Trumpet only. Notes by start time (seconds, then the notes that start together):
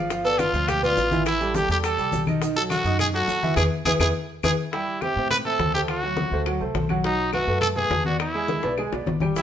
0.25 A4
0.39 F4
0.69 G4
0.84 F4
1.26 E4
1.55 G4
1.71 G4
1.84 A4
2.56 A4
2.71 F#4
3.00 G#4
3.15 F#4
3.56 G#4
3.85 G#4
4.00 G#4
4.44 G#4
4.72 E4
5.02 G4
5.31 B4
5.45 A4
5.74 G4
5.90 F#4
7.05 D#4
7.33 F#4
7.61 A4
7.76 G#4
8.05 F#4
8.20 E4
9.37 E4